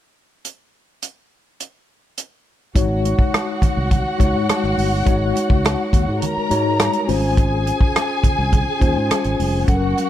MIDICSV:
0, 0, Header, 1, 6, 480
1, 0, Start_track
1, 0, Tempo, 577201
1, 371, Time_signature, 4, 2, 24, 8
1, 8397, End_track
2, 0, Start_track
2, 0, Title_t, "String section"
2, 0, Program_c, 0, 48
2, 2298, Note_on_c, 0, 78, 79
2, 2302, Note_on_c, 0, 66, 73
2, 5141, Note_off_c, 0, 78, 0
2, 5143, Note_off_c, 0, 66, 0
2, 5168, Note_on_c, 0, 82, 77
2, 5169, Note_on_c, 0, 70, 65
2, 5875, Note_off_c, 0, 70, 0
2, 5875, Note_off_c, 0, 82, 0
2, 5889, Note_on_c, 0, 68, 71
2, 5890, Note_on_c, 0, 80, 86
2, 8017, Note_off_c, 0, 68, 0
2, 8017, Note_off_c, 0, 80, 0
2, 8047, Note_on_c, 0, 66, 72
2, 8049, Note_on_c, 0, 78, 78
2, 8397, Note_off_c, 0, 66, 0
2, 8397, Note_off_c, 0, 78, 0
2, 8397, End_track
3, 0, Start_track
3, 0, Title_t, "Tine electric piano"
3, 0, Program_c, 1, 4
3, 2285, Note_on_c, 1, 56, 69
3, 2288, Note_on_c, 1, 63, 68
3, 2294, Note_on_c, 1, 66, 65
3, 2295, Note_on_c, 1, 73, 80
3, 2466, Control_c, 1, 64, 127
3, 3046, Note_off_c, 1, 56, 0
3, 3048, Note_off_c, 1, 63, 0
3, 3051, Note_off_c, 1, 66, 0
3, 3051, Note_off_c, 1, 73, 0
3, 3478, Note_on_c, 1, 56, 72
3, 3484, Note_on_c, 1, 63, 65
3, 3487, Note_on_c, 1, 66, 65
3, 3492, Note_on_c, 1, 73, 76
3, 4053, Note_off_c, 1, 56, 0
3, 4056, Note_off_c, 1, 63, 0
3, 4058, Note_off_c, 1, 66, 0
3, 4060, Note_off_c, 1, 73, 0
3, 4203, Note_on_c, 1, 56, 75
3, 4207, Note_on_c, 1, 63, 66
3, 4208, Note_on_c, 1, 66, 66
3, 4212, Note_on_c, 1, 73, 82
3, 4965, Note_off_c, 1, 56, 0
3, 4967, Note_off_c, 1, 63, 0
3, 4968, Note_off_c, 1, 66, 0
3, 4970, Note_off_c, 1, 73, 0
3, 5403, Note_on_c, 1, 56, 74
3, 5408, Note_on_c, 1, 63, 66
3, 5411, Note_on_c, 1, 66, 65
3, 5416, Note_on_c, 1, 73, 81
3, 5884, Note_on_c, 1, 61, 76
3, 5887, Note_off_c, 1, 56, 0
3, 5889, Note_on_c, 1, 65, 74
3, 5890, Note_off_c, 1, 63, 0
3, 5891, Note_off_c, 1, 66, 0
3, 5894, Note_off_c, 1, 73, 0
3, 5895, Note_on_c, 1, 72, 80
3, 5903, Control_c, 1, 64, 0
3, 6070, Control_c, 1, 64, 127
3, 6656, Note_off_c, 1, 61, 0
3, 6658, Note_off_c, 1, 65, 0
3, 6661, Note_off_c, 1, 72, 0
3, 7318, Note_on_c, 1, 61, 76
3, 7324, Note_on_c, 1, 65, 69
3, 7330, Note_on_c, 1, 72, 83
3, 7893, Note_off_c, 1, 61, 0
3, 7896, Note_off_c, 1, 65, 0
3, 7899, Note_off_c, 1, 72, 0
3, 8043, Note_on_c, 1, 54, 73
3, 8048, Note_on_c, 1, 61, 68
3, 8049, Note_on_c, 1, 69, 55
3, 8054, Note_on_c, 1, 78, 79
3, 8060, Control_c, 1, 64, 0
3, 8104, Note_off_c, 1, 69, 0
3, 8106, Note_on_c, 1, 70, 64
3, 8204, Control_c, 1, 64, 127
3, 8397, Note_off_c, 1, 54, 0
3, 8397, Note_off_c, 1, 61, 0
3, 8397, Note_off_c, 1, 70, 0
3, 8397, Note_off_c, 1, 78, 0
3, 8397, End_track
4, 0, Start_track
4, 0, Title_t, "Fingered electric bass"
4, 0, Program_c, 2, 33
4, 2292, Note_on_c, 2, 32, 83
4, 2599, Note_off_c, 2, 32, 0
4, 3136, Note_on_c, 2, 36, 86
4, 3338, Note_off_c, 2, 36, 0
4, 3493, Note_on_c, 2, 37, 82
4, 3595, Note_off_c, 2, 37, 0
4, 3613, Note_on_c, 2, 44, 74
4, 3714, Note_off_c, 2, 44, 0
4, 3855, Note_on_c, 2, 32, 83
4, 3956, Note_off_c, 2, 32, 0
4, 3976, Note_on_c, 2, 31, 82
4, 4179, Note_off_c, 2, 31, 0
4, 4215, Note_on_c, 2, 32, 84
4, 4418, Note_off_c, 2, 32, 0
4, 4577, Note_on_c, 2, 37, 78
4, 4779, Note_off_c, 2, 37, 0
4, 4934, Note_on_c, 2, 39, 74
4, 5035, Note_off_c, 2, 39, 0
4, 5059, Note_on_c, 2, 44, 82
4, 5158, Note_off_c, 2, 44, 0
4, 5413, Note_on_c, 2, 44, 82
4, 5719, Note_off_c, 2, 44, 0
4, 5894, Note_on_c, 2, 32, 86
4, 6405, Note_off_c, 2, 32, 0
4, 6974, Note_on_c, 2, 36, 91
4, 7177, Note_off_c, 2, 36, 0
4, 7332, Note_on_c, 2, 39, 89
4, 7434, Note_off_c, 2, 39, 0
4, 7453, Note_on_c, 2, 44, 87
4, 7554, Note_off_c, 2, 44, 0
4, 7692, Note_on_c, 2, 32, 83
4, 7794, Note_off_c, 2, 32, 0
4, 7813, Note_on_c, 2, 29, 89
4, 8017, Note_off_c, 2, 29, 0
4, 8051, Note_on_c, 2, 30, 89
4, 8256, Note_off_c, 2, 30, 0
4, 8397, End_track
5, 0, Start_track
5, 0, Title_t, "Muted fingered electric bass strokes"
5, 3013, Note_on_c, 9, 29, 40
5, 3096, Note_off_c, 9, 29, 0
5, 5298, Note_on_c, 9, 29, 42
5, 5381, Note_off_c, 9, 29, 0
5, 6849, Note_on_c, 9, 29, 43
5, 6932, Note_off_c, 9, 29, 0
5, 8397, End_track
6, 0, Start_track
6, 0, Title_t, "Drums"
6, 372, Note_on_c, 9, 42, 46
6, 455, Note_off_c, 9, 42, 0
6, 852, Note_on_c, 9, 42, 54
6, 935, Note_off_c, 9, 42, 0
6, 1333, Note_on_c, 9, 42, 53
6, 1416, Note_off_c, 9, 42, 0
6, 1809, Note_on_c, 9, 42, 54
6, 1892, Note_off_c, 9, 42, 0
6, 2291, Note_on_c, 9, 36, 92
6, 2291, Note_on_c, 9, 42, 79
6, 2293, Note_on_c, 9, 62, 49
6, 2374, Note_off_c, 9, 36, 0
6, 2374, Note_off_c, 9, 42, 0
6, 2376, Note_off_c, 9, 62, 0
6, 2538, Note_on_c, 9, 42, 61
6, 2538, Note_on_c, 9, 62, 44
6, 2621, Note_off_c, 9, 42, 0
6, 2621, Note_off_c, 9, 62, 0
6, 2650, Note_on_c, 9, 36, 82
6, 2733, Note_off_c, 9, 36, 0
6, 2778, Note_on_c, 9, 42, 71
6, 2779, Note_on_c, 9, 63, 66
6, 2780, Note_on_c, 9, 37, 105
6, 2861, Note_off_c, 9, 42, 0
6, 2863, Note_off_c, 9, 37, 0
6, 2863, Note_off_c, 9, 63, 0
6, 3010, Note_on_c, 9, 36, 79
6, 3015, Note_on_c, 9, 42, 58
6, 3015, Note_on_c, 9, 62, 33
6, 3015, Note_on_c, 9, 64, 68
6, 3093, Note_off_c, 9, 36, 0
6, 3098, Note_off_c, 9, 42, 0
6, 3098, Note_off_c, 9, 62, 0
6, 3098, Note_off_c, 9, 64, 0
6, 3252, Note_on_c, 9, 42, 72
6, 3253, Note_on_c, 9, 36, 86
6, 3257, Note_on_c, 9, 64, 67
6, 3335, Note_off_c, 9, 42, 0
6, 3337, Note_off_c, 9, 36, 0
6, 3340, Note_off_c, 9, 64, 0
6, 3492, Note_on_c, 9, 36, 79
6, 3496, Note_on_c, 9, 42, 59
6, 3499, Note_on_c, 9, 62, 47
6, 3575, Note_off_c, 9, 36, 0
6, 3579, Note_off_c, 9, 42, 0
6, 3582, Note_off_c, 9, 62, 0
6, 3735, Note_on_c, 9, 42, 81
6, 3737, Note_on_c, 9, 63, 58
6, 3738, Note_on_c, 9, 37, 96
6, 3819, Note_off_c, 9, 42, 0
6, 3820, Note_off_c, 9, 63, 0
6, 3821, Note_off_c, 9, 37, 0
6, 3856, Note_on_c, 9, 37, 34
6, 3940, Note_off_c, 9, 37, 0
6, 3970, Note_on_c, 9, 63, 57
6, 3979, Note_on_c, 9, 46, 60
6, 4053, Note_off_c, 9, 63, 0
6, 4062, Note_off_c, 9, 46, 0
6, 4210, Note_on_c, 9, 62, 47
6, 4212, Note_on_c, 9, 36, 89
6, 4212, Note_on_c, 9, 42, 76
6, 4293, Note_off_c, 9, 62, 0
6, 4295, Note_off_c, 9, 36, 0
6, 4295, Note_off_c, 9, 42, 0
6, 4455, Note_on_c, 9, 62, 48
6, 4461, Note_on_c, 9, 42, 62
6, 4538, Note_off_c, 9, 62, 0
6, 4544, Note_off_c, 9, 42, 0
6, 4573, Note_on_c, 9, 36, 84
6, 4656, Note_off_c, 9, 36, 0
6, 4696, Note_on_c, 9, 63, 67
6, 4703, Note_on_c, 9, 42, 73
6, 4704, Note_on_c, 9, 37, 107
6, 4780, Note_off_c, 9, 63, 0
6, 4786, Note_off_c, 9, 42, 0
6, 4788, Note_off_c, 9, 37, 0
6, 4932, Note_on_c, 9, 36, 81
6, 4936, Note_on_c, 9, 42, 61
6, 5015, Note_off_c, 9, 36, 0
6, 5019, Note_off_c, 9, 42, 0
6, 5172, Note_on_c, 9, 42, 69
6, 5177, Note_on_c, 9, 64, 65
6, 5255, Note_off_c, 9, 42, 0
6, 5260, Note_off_c, 9, 64, 0
6, 5412, Note_on_c, 9, 42, 61
6, 5416, Note_on_c, 9, 62, 50
6, 5495, Note_off_c, 9, 42, 0
6, 5500, Note_off_c, 9, 62, 0
6, 5650, Note_on_c, 9, 42, 78
6, 5653, Note_on_c, 9, 37, 103
6, 5653, Note_on_c, 9, 63, 57
6, 5733, Note_off_c, 9, 42, 0
6, 5736, Note_off_c, 9, 37, 0
6, 5736, Note_off_c, 9, 63, 0
6, 5765, Note_on_c, 9, 42, 43
6, 5848, Note_off_c, 9, 42, 0
6, 5893, Note_on_c, 9, 46, 62
6, 5895, Note_on_c, 9, 63, 59
6, 5976, Note_off_c, 9, 46, 0
6, 5978, Note_off_c, 9, 63, 0
6, 6132, Note_on_c, 9, 36, 86
6, 6134, Note_on_c, 9, 62, 45
6, 6136, Note_on_c, 9, 42, 80
6, 6215, Note_off_c, 9, 36, 0
6, 6217, Note_off_c, 9, 62, 0
6, 6219, Note_off_c, 9, 42, 0
6, 6376, Note_on_c, 9, 62, 45
6, 6379, Note_on_c, 9, 42, 61
6, 6459, Note_off_c, 9, 62, 0
6, 6462, Note_off_c, 9, 42, 0
6, 6491, Note_on_c, 9, 36, 85
6, 6574, Note_off_c, 9, 36, 0
6, 6618, Note_on_c, 9, 42, 68
6, 6618, Note_on_c, 9, 63, 62
6, 6620, Note_on_c, 9, 37, 104
6, 6701, Note_off_c, 9, 42, 0
6, 6702, Note_off_c, 9, 63, 0
6, 6703, Note_off_c, 9, 37, 0
6, 6849, Note_on_c, 9, 36, 80
6, 6852, Note_on_c, 9, 42, 62
6, 6856, Note_on_c, 9, 62, 32
6, 6856, Note_on_c, 9, 64, 67
6, 6932, Note_off_c, 9, 36, 0
6, 6935, Note_off_c, 9, 42, 0
6, 6940, Note_off_c, 9, 62, 0
6, 6940, Note_off_c, 9, 64, 0
6, 7091, Note_on_c, 9, 42, 68
6, 7092, Note_on_c, 9, 36, 86
6, 7092, Note_on_c, 9, 64, 69
6, 7174, Note_off_c, 9, 42, 0
6, 7175, Note_off_c, 9, 36, 0
6, 7176, Note_off_c, 9, 64, 0
6, 7330, Note_on_c, 9, 36, 81
6, 7332, Note_on_c, 9, 42, 54
6, 7338, Note_on_c, 9, 62, 48
6, 7413, Note_off_c, 9, 36, 0
6, 7415, Note_off_c, 9, 42, 0
6, 7422, Note_off_c, 9, 62, 0
6, 7573, Note_on_c, 9, 42, 81
6, 7576, Note_on_c, 9, 37, 98
6, 7576, Note_on_c, 9, 63, 59
6, 7656, Note_off_c, 9, 42, 0
6, 7659, Note_off_c, 9, 37, 0
6, 7659, Note_off_c, 9, 63, 0
6, 7686, Note_on_c, 9, 42, 41
6, 7769, Note_off_c, 9, 42, 0
6, 7814, Note_on_c, 9, 63, 60
6, 7815, Note_on_c, 9, 46, 63
6, 7898, Note_off_c, 9, 46, 0
6, 7898, Note_off_c, 9, 63, 0
6, 8048, Note_on_c, 9, 62, 46
6, 8050, Note_on_c, 9, 36, 91
6, 8050, Note_on_c, 9, 42, 82
6, 8131, Note_off_c, 9, 62, 0
6, 8133, Note_off_c, 9, 36, 0
6, 8133, Note_off_c, 9, 42, 0
6, 8295, Note_on_c, 9, 62, 46
6, 8298, Note_on_c, 9, 42, 58
6, 8378, Note_off_c, 9, 62, 0
6, 8381, Note_off_c, 9, 42, 0
6, 8397, End_track
0, 0, End_of_file